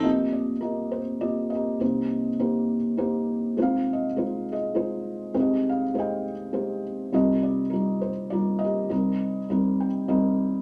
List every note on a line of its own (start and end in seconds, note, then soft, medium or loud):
0.00 1.77 C2 soft
0.00 1.77 C3 soft
0.00 0.51 A#3 soft
0.00 0.51 F4 soft
0.00 0.51 G4 soft
0.00 0.10 A4 medium
0.00 0.34 D#5 medium
0.05 0.59 A#4 medium
0.33 0.60 D5 medium
0.61 0.98 A#3 soft
0.61 0.99 F4 soft
0.61 0.99 G4 soft
0.61 0.92 A#4 medium
0.61 0.99 D#5 soft
0.92 1.22 C5 medium
1.20 1.78 A#3 soft
1.20 1.80 F4 soft
1.20 1.53 G4 soft
1.20 1.52 D5 medium
1.20 1.49 D#5 medium
1.50 2.35 D#5 medium
1.54 1.79 G4 soft
1.54 2.38 A#4 soft
1.80 3.54 C2 soft
1.80 3.54 C3 soft
1.80 2.27 A#3 medium
1.80 2.28 D#4 medium
1.80 2.28 G4 medium
1.80 2.28 C5 medium
2.39 2.76 A#3 medium
2.39 2.76 D#4 soft
2.39 2.76 G4 soft
2.39 2.76 C5 medium
2.97 3.57 A#3 medium
2.97 3.56 D#4 medium
2.97 3.58 G4 medium
2.97 3.57 C5 medium
3.57 5.31 C2 soft
3.57 5.31 C3 soft
3.57 4.05 G#3 medium
3.57 4.05 D#4 medium
3.57 4.05 F4 medium
3.57 4.05 C5 medium
3.62 4.45 G#4 soft
3.62 3.90 F5 medium
3.93 4.20 D#5 medium
4.16 4.53 G#3 soft
4.16 4.53 D#4 soft
4.16 4.53 F4 soft
4.16 4.53 C5 medium
4.52 5.34 G#4 medium
4.52 5.39 D#5 medium
4.75 5.33 G#3 soft
4.75 5.33 D#4 soft
4.75 5.35 F4 soft
4.75 5.33 C5 medium
5.34 7.09 C2 soft
5.34 7.09 C3 soft
5.34 5.82 G#3 medium
5.34 5.82 D#4 medium
5.34 5.82 C5 medium
5.34 5.82 G5 soft
5.39 5.93 G4 soft
5.39 6.22 G#4 soft
5.39 5.68 D#5 medium
5.69 5.95 F5 medium
5.94 6.30 G#3 soft
5.94 6.31 D#4 soft
5.94 6.31 G4 soft
5.94 6.31 C5 medium
5.98 6.81 D#5 medium
5.98 6.82 G5 medium
6.53 7.13 G#3 soft
6.53 7.12 D#4 soft
6.53 7.13 G4 soft
6.53 7.13 C5 medium
7.12 8.87 C2 soft
7.12 8.87 C3 soft
7.12 7.60 G3 medium
7.12 7.61 D#4 medium
7.12 7.61 F4 medium
7.12 7.99 G4 soft
7.12 7.61 A#4 medium
7.12 7.41 D#5 medium
7.43 7.70 D5 medium
7.70 8.09 G3 soft
7.70 8.09 D#4 soft
7.70 8.09 F4 soft
7.70 7.72 A#4 medium
7.70 8.09 A#4 soft
8.01 8.32 C5 medium
8.30 8.88 G3 soft
8.30 8.89 D#4 soft
8.30 8.91 F4 soft
8.30 8.63 A#4 medium
8.30 8.61 D5 medium
8.59 9.45 D#5 medium
8.64 9.47 G4 soft
8.64 8.89 A#4 soft
8.89 10.62 C2 soft
8.89 10.62 C3 soft
8.89 9.37 G3 medium
8.89 9.38 C4 medium
8.89 9.38 D#4 soft
8.89 9.38 A#4 medium
9.50 9.86 G3 medium
9.50 9.86 C4 medium
9.50 9.87 D#4 medium
9.50 9.87 A#4 medium
9.80 10.07 G5 medium
10.08 10.62 G3 medium
10.08 10.62 C4 medium
10.08 10.62 D#4 medium
10.08 10.62 A#4 medium
10.08 10.62 D#5 medium